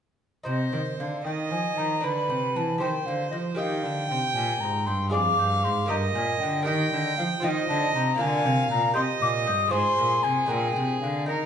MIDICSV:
0, 0, Header, 1, 5, 480
1, 0, Start_track
1, 0, Tempo, 519031
1, 435, Time_signature, 6, 3, 24, 8
1, 3793, Tempo, 512383
1, 9073, Tempo, 524017
1, 10647, End_track
2, 0, Start_track
2, 0, Title_t, "Flute"
2, 0, Program_c, 0, 73
2, 437, Note_on_c, 0, 75, 84
2, 883, Note_off_c, 0, 75, 0
2, 919, Note_on_c, 0, 77, 72
2, 1149, Note_off_c, 0, 77, 0
2, 1155, Note_on_c, 0, 79, 80
2, 1210, Note_off_c, 0, 79, 0
2, 1400, Note_on_c, 0, 80, 84
2, 1644, Note_on_c, 0, 82, 91
2, 1658, Note_off_c, 0, 80, 0
2, 1891, Note_on_c, 0, 83, 90
2, 1905, Note_off_c, 0, 82, 0
2, 2373, Note_on_c, 0, 81, 84
2, 2387, Note_off_c, 0, 83, 0
2, 2605, Note_on_c, 0, 79, 86
2, 2619, Note_off_c, 0, 81, 0
2, 2832, Note_on_c, 0, 77, 85
2, 2846, Note_off_c, 0, 79, 0
2, 3053, Note_off_c, 0, 77, 0
2, 3058, Note_on_c, 0, 75, 79
2, 3114, Note_off_c, 0, 75, 0
2, 3317, Note_on_c, 0, 77, 96
2, 3773, Note_on_c, 0, 79, 79
2, 3787, Note_off_c, 0, 77, 0
2, 4019, Note_on_c, 0, 80, 93
2, 4034, Note_off_c, 0, 79, 0
2, 4265, Note_on_c, 0, 82, 91
2, 4279, Note_off_c, 0, 80, 0
2, 4507, Note_on_c, 0, 84, 85
2, 4521, Note_off_c, 0, 82, 0
2, 4748, Note_off_c, 0, 84, 0
2, 4754, Note_on_c, 0, 86, 114
2, 5235, Note_on_c, 0, 84, 96
2, 5249, Note_off_c, 0, 86, 0
2, 5470, Note_off_c, 0, 84, 0
2, 5475, Note_on_c, 0, 82, 94
2, 5531, Note_off_c, 0, 82, 0
2, 5714, Note_on_c, 0, 80, 96
2, 5952, Note_on_c, 0, 79, 101
2, 5966, Note_off_c, 0, 80, 0
2, 6196, Note_off_c, 0, 79, 0
2, 6205, Note_on_c, 0, 75, 111
2, 6664, Note_off_c, 0, 75, 0
2, 6670, Note_on_c, 0, 77, 100
2, 6726, Note_off_c, 0, 77, 0
2, 6913, Note_on_c, 0, 79, 107
2, 6969, Note_off_c, 0, 79, 0
2, 7157, Note_on_c, 0, 81, 104
2, 7391, Note_off_c, 0, 81, 0
2, 7395, Note_on_c, 0, 82, 102
2, 7643, Note_on_c, 0, 80, 122
2, 7657, Note_off_c, 0, 82, 0
2, 8105, Note_off_c, 0, 80, 0
2, 8111, Note_on_c, 0, 82, 119
2, 8327, Note_off_c, 0, 82, 0
2, 8333, Note_on_c, 0, 84, 100
2, 8389, Note_off_c, 0, 84, 0
2, 8587, Note_on_c, 0, 86, 115
2, 8643, Note_off_c, 0, 86, 0
2, 8816, Note_on_c, 0, 87, 108
2, 9051, Note_on_c, 0, 84, 127
2, 9065, Note_off_c, 0, 87, 0
2, 9527, Note_on_c, 0, 80, 108
2, 9541, Note_off_c, 0, 84, 0
2, 9766, Note_on_c, 0, 79, 90
2, 9780, Note_off_c, 0, 80, 0
2, 10236, Note_off_c, 0, 79, 0
2, 10242, Note_on_c, 0, 77, 88
2, 10477, Note_off_c, 0, 77, 0
2, 10483, Note_on_c, 0, 75, 96
2, 10647, Note_off_c, 0, 75, 0
2, 10647, End_track
3, 0, Start_track
3, 0, Title_t, "Violin"
3, 0, Program_c, 1, 40
3, 439, Note_on_c, 1, 72, 70
3, 1123, Note_off_c, 1, 72, 0
3, 1160, Note_on_c, 1, 75, 83
3, 1881, Note_on_c, 1, 71, 74
3, 1894, Note_off_c, 1, 75, 0
3, 2592, Note_off_c, 1, 71, 0
3, 2597, Note_on_c, 1, 72, 75
3, 3305, Note_on_c, 1, 79, 78
3, 3319, Note_off_c, 1, 72, 0
3, 4728, Note_off_c, 1, 79, 0
3, 4734, Note_on_c, 1, 77, 86
3, 5464, Note_on_c, 1, 75, 88
3, 5478, Note_off_c, 1, 77, 0
3, 6174, Note_off_c, 1, 75, 0
3, 6180, Note_on_c, 1, 79, 87
3, 6924, Note_on_c, 1, 75, 94
3, 6938, Note_off_c, 1, 79, 0
3, 7605, Note_off_c, 1, 75, 0
3, 7610, Note_on_c, 1, 77, 89
3, 8326, Note_off_c, 1, 77, 0
3, 8355, Note_on_c, 1, 75, 92
3, 9060, Note_off_c, 1, 75, 0
3, 9080, Note_on_c, 1, 68, 85
3, 10486, Note_off_c, 1, 68, 0
3, 10508, Note_on_c, 1, 70, 66
3, 10647, Note_off_c, 1, 70, 0
3, 10647, End_track
4, 0, Start_track
4, 0, Title_t, "Lute"
4, 0, Program_c, 2, 24
4, 402, Note_on_c, 2, 63, 46
4, 413, Note_on_c, 2, 72, 45
4, 425, Note_on_c, 2, 48, 52
4, 646, Note_off_c, 2, 48, 0
4, 671, Note_on_c, 2, 51, 52
4, 890, Note_off_c, 2, 51, 0
4, 926, Note_on_c, 2, 50, 54
4, 1139, Note_off_c, 2, 50, 0
4, 1169, Note_on_c, 2, 51, 48
4, 1381, Note_off_c, 2, 51, 0
4, 1395, Note_on_c, 2, 53, 53
4, 1614, Note_off_c, 2, 53, 0
4, 1655, Note_on_c, 2, 51, 53
4, 1828, Note_off_c, 2, 63, 0
4, 1834, Note_off_c, 2, 72, 0
4, 1857, Note_on_c, 2, 62, 45
4, 1866, Note_off_c, 2, 51, 0
4, 1870, Note_on_c, 2, 71, 44
4, 1884, Note_on_c, 2, 50, 51
4, 2100, Note_off_c, 2, 50, 0
4, 2123, Note_on_c, 2, 48, 56
4, 2339, Note_off_c, 2, 48, 0
4, 2370, Note_on_c, 2, 52, 55
4, 2566, Note_off_c, 2, 62, 0
4, 2571, Note_on_c, 2, 67, 48
4, 2573, Note_off_c, 2, 71, 0
4, 2581, Note_off_c, 2, 52, 0
4, 2590, Note_on_c, 2, 72, 47
4, 2602, Note_on_c, 2, 51, 47
4, 2815, Note_off_c, 2, 51, 0
4, 2847, Note_on_c, 2, 50, 55
4, 3057, Note_off_c, 2, 50, 0
4, 3075, Note_on_c, 2, 53, 55
4, 3275, Note_off_c, 2, 53, 0
4, 3278, Note_off_c, 2, 67, 0
4, 3279, Note_on_c, 2, 58, 46
4, 3287, Note_off_c, 2, 72, 0
4, 3292, Note_on_c, 2, 67, 54
4, 3303, Note_on_c, 2, 75, 46
4, 3320, Note_on_c, 2, 51, 55
4, 3528, Note_off_c, 2, 58, 0
4, 3533, Note_off_c, 2, 51, 0
4, 3564, Note_on_c, 2, 50, 59
4, 3775, Note_off_c, 2, 50, 0
4, 3805, Note_on_c, 2, 48, 57
4, 4016, Note_off_c, 2, 48, 0
4, 4044, Note_on_c, 2, 46, 63
4, 4256, Note_off_c, 2, 46, 0
4, 4290, Note_on_c, 2, 44, 59
4, 4500, Note_off_c, 2, 44, 0
4, 4514, Note_on_c, 2, 43, 60
4, 4707, Note_off_c, 2, 67, 0
4, 4713, Note_off_c, 2, 75, 0
4, 4724, Note_on_c, 2, 56, 49
4, 4731, Note_off_c, 2, 43, 0
4, 4736, Note_on_c, 2, 68, 52
4, 4748, Note_on_c, 2, 74, 52
4, 4765, Note_on_c, 2, 41, 62
4, 4974, Note_off_c, 2, 56, 0
4, 4978, Note_off_c, 2, 41, 0
4, 4999, Note_on_c, 2, 43, 57
4, 5214, Note_off_c, 2, 43, 0
4, 5241, Note_on_c, 2, 44, 65
4, 5439, Note_on_c, 2, 58, 57
4, 5446, Note_off_c, 2, 68, 0
4, 5452, Note_off_c, 2, 74, 0
4, 5455, Note_off_c, 2, 44, 0
4, 5457, Note_on_c, 2, 67, 51
4, 5465, Note_on_c, 2, 75, 55
4, 5484, Note_on_c, 2, 43, 65
4, 5697, Note_off_c, 2, 43, 0
4, 5715, Note_on_c, 2, 46, 69
4, 5924, Note_off_c, 2, 58, 0
4, 5933, Note_off_c, 2, 46, 0
4, 5973, Note_on_c, 2, 50, 62
4, 6159, Note_on_c, 2, 58, 57
4, 6167, Note_off_c, 2, 67, 0
4, 6171, Note_off_c, 2, 75, 0
4, 6177, Note_on_c, 2, 67, 57
4, 6183, Note_off_c, 2, 50, 0
4, 6187, Note_on_c, 2, 75, 62
4, 6201, Note_on_c, 2, 51, 66
4, 6410, Note_off_c, 2, 58, 0
4, 6415, Note_off_c, 2, 51, 0
4, 6448, Note_on_c, 2, 50, 65
4, 6659, Note_off_c, 2, 50, 0
4, 6689, Note_on_c, 2, 53, 62
4, 6878, Note_off_c, 2, 53, 0
4, 6882, Note_on_c, 2, 60, 57
4, 6885, Note_off_c, 2, 67, 0
4, 6890, Note_off_c, 2, 75, 0
4, 6895, Note_on_c, 2, 65, 59
4, 6910, Note_on_c, 2, 77, 56
4, 6923, Note_on_c, 2, 51, 59
4, 7137, Note_off_c, 2, 51, 0
4, 7169, Note_on_c, 2, 50, 73
4, 7379, Note_off_c, 2, 50, 0
4, 7406, Note_on_c, 2, 48, 67
4, 7590, Note_off_c, 2, 48, 0
4, 7593, Note_on_c, 2, 58, 58
4, 7595, Note_off_c, 2, 60, 0
4, 7599, Note_off_c, 2, 65, 0
4, 7610, Note_off_c, 2, 77, 0
4, 7610, Note_on_c, 2, 65, 58
4, 7623, Note_on_c, 2, 77, 57
4, 7638, Note_on_c, 2, 50, 65
4, 7851, Note_off_c, 2, 50, 0
4, 7877, Note_on_c, 2, 48, 66
4, 8091, Note_off_c, 2, 48, 0
4, 8112, Note_on_c, 2, 46, 66
4, 8310, Note_off_c, 2, 58, 0
4, 8318, Note_off_c, 2, 65, 0
4, 8322, Note_on_c, 2, 67, 65
4, 8325, Note_off_c, 2, 77, 0
4, 8328, Note_off_c, 2, 46, 0
4, 8336, Note_on_c, 2, 75, 56
4, 8346, Note_on_c, 2, 48, 59
4, 8565, Note_off_c, 2, 48, 0
4, 8585, Note_on_c, 2, 46, 67
4, 8804, Note_off_c, 2, 46, 0
4, 8821, Note_on_c, 2, 43, 72
4, 9014, Note_on_c, 2, 56, 57
4, 9028, Note_off_c, 2, 67, 0
4, 9032, Note_on_c, 2, 65, 58
4, 9043, Note_off_c, 2, 43, 0
4, 9043, Note_off_c, 2, 75, 0
4, 9046, Note_on_c, 2, 72, 59
4, 9061, Note_on_c, 2, 44, 70
4, 9279, Note_off_c, 2, 44, 0
4, 9297, Note_on_c, 2, 46, 66
4, 9517, Note_off_c, 2, 46, 0
4, 9536, Note_on_c, 2, 48, 67
4, 9725, Note_off_c, 2, 56, 0
4, 9736, Note_on_c, 2, 56, 52
4, 9744, Note_off_c, 2, 65, 0
4, 9750, Note_on_c, 2, 62, 50
4, 9751, Note_off_c, 2, 72, 0
4, 9756, Note_off_c, 2, 48, 0
4, 9760, Note_on_c, 2, 70, 54
4, 9773, Note_on_c, 2, 46, 57
4, 9995, Note_off_c, 2, 46, 0
4, 10010, Note_on_c, 2, 48, 64
4, 10235, Note_off_c, 2, 48, 0
4, 10262, Note_on_c, 2, 50, 58
4, 10464, Note_off_c, 2, 56, 0
4, 10468, Note_on_c, 2, 63, 51
4, 10471, Note_off_c, 2, 62, 0
4, 10472, Note_off_c, 2, 70, 0
4, 10483, Note_on_c, 2, 70, 44
4, 10484, Note_off_c, 2, 50, 0
4, 10497, Note_on_c, 2, 51, 53
4, 10647, Note_off_c, 2, 51, 0
4, 10647, Note_off_c, 2, 63, 0
4, 10647, Note_off_c, 2, 70, 0
4, 10647, End_track
5, 0, Start_track
5, 0, Title_t, "Cello"
5, 0, Program_c, 3, 42
5, 426, Note_on_c, 3, 48, 68
5, 654, Note_off_c, 3, 48, 0
5, 673, Note_on_c, 3, 51, 60
5, 747, Note_off_c, 3, 51, 0
5, 913, Note_on_c, 3, 50, 64
5, 1153, Note_on_c, 3, 51, 72
5, 1167, Note_off_c, 3, 50, 0
5, 1393, Note_on_c, 3, 53, 67
5, 1407, Note_off_c, 3, 51, 0
5, 1628, Note_off_c, 3, 53, 0
5, 1633, Note_on_c, 3, 51, 60
5, 1873, Note_off_c, 3, 51, 0
5, 1882, Note_on_c, 3, 50, 69
5, 2112, Note_on_c, 3, 48, 69
5, 2126, Note_off_c, 3, 50, 0
5, 2357, Note_on_c, 3, 52, 67
5, 2371, Note_off_c, 3, 48, 0
5, 2588, Note_off_c, 3, 52, 0
5, 2594, Note_on_c, 3, 51, 66
5, 2667, Note_off_c, 3, 51, 0
5, 2831, Note_on_c, 3, 50, 60
5, 3062, Note_off_c, 3, 50, 0
5, 3068, Note_on_c, 3, 53, 62
5, 3305, Note_off_c, 3, 53, 0
5, 3312, Note_on_c, 3, 51, 74
5, 3543, Note_on_c, 3, 50, 66
5, 3557, Note_off_c, 3, 51, 0
5, 3783, Note_off_c, 3, 50, 0
5, 3788, Note_on_c, 3, 48, 69
5, 3863, Note_off_c, 3, 48, 0
5, 4027, Note_on_c, 3, 46, 72
5, 4261, Note_off_c, 3, 46, 0
5, 4267, Note_on_c, 3, 44, 75
5, 4512, Note_on_c, 3, 43, 75
5, 4526, Note_off_c, 3, 44, 0
5, 4751, Note_on_c, 3, 41, 78
5, 4765, Note_off_c, 3, 43, 0
5, 4988, Note_off_c, 3, 41, 0
5, 4994, Note_on_c, 3, 43, 76
5, 5232, Note_on_c, 3, 44, 77
5, 5246, Note_off_c, 3, 43, 0
5, 5467, Note_off_c, 3, 44, 0
5, 5473, Note_on_c, 3, 43, 79
5, 5708, Note_off_c, 3, 43, 0
5, 5714, Note_on_c, 3, 46, 73
5, 5952, Note_off_c, 3, 46, 0
5, 5956, Note_on_c, 3, 50, 76
5, 6197, Note_on_c, 3, 51, 86
5, 6211, Note_off_c, 3, 50, 0
5, 6434, Note_off_c, 3, 51, 0
5, 6439, Note_on_c, 3, 50, 72
5, 6673, Note_off_c, 3, 50, 0
5, 6680, Note_on_c, 3, 53, 77
5, 6755, Note_off_c, 3, 53, 0
5, 6915, Note_on_c, 3, 51, 85
5, 7152, Note_off_c, 3, 51, 0
5, 7158, Note_on_c, 3, 50, 81
5, 7390, Note_off_c, 3, 50, 0
5, 7395, Note_on_c, 3, 48, 76
5, 7626, Note_off_c, 3, 48, 0
5, 7632, Note_on_c, 3, 50, 90
5, 7873, Note_on_c, 3, 48, 81
5, 7887, Note_off_c, 3, 50, 0
5, 8101, Note_off_c, 3, 48, 0
5, 8107, Note_on_c, 3, 46, 89
5, 8342, Note_off_c, 3, 46, 0
5, 8348, Note_on_c, 3, 48, 78
5, 8423, Note_off_c, 3, 48, 0
5, 8582, Note_on_c, 3, 46, 78
5, 8831, Note_on_c, 3, 43, 74
5, 8845, Note_off_c, 3, 46, 0
5, 9057, Note_off_c, 3, 43, 0
5, 9063, Note_on_c, 3, 44, 90
5, 9136, Note_off_c, 3, 44, 0
5, 9307, Note_on_c, 3, 46, 72
5, 9537, Note_off_c, 3, 46, 0
5, 9543, Note_on_c, 3, 48, 73
5, 9766, Note_off_c, 3, 48, 0
5, 9771, Note_on_c, 3, 46, 87
5, 10012, Note_off_c, 3, 46, 0
5, 10018, Note_on_c, 3, 48, 66
5, 10246, Note_off_c, 3, 48, 0
5, 10251, Note_on_c, 3, 50, 71
5, 10499, Note_on_c, 3, 51, 71
5, 10513, Note_off_c, 3, 50, 0
5, 10647, Note_off_c, 3, 51, 0
5, 10647, End_track
0, 0, End_of_file